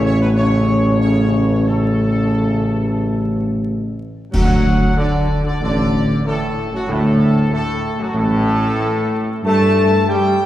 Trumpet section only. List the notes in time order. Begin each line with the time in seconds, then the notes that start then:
0.05 C#5
0.21 B4
0.37 C#5
1.01 C#5
1.67 A4
4.33 F#5
4.98 D5
5.46 D5
5.63 D5
6.26 A4
6.74 F#4
6.90 A4
7.53 A4
8.00 F#4
8.16 A4
9.44 A5
10.08 G5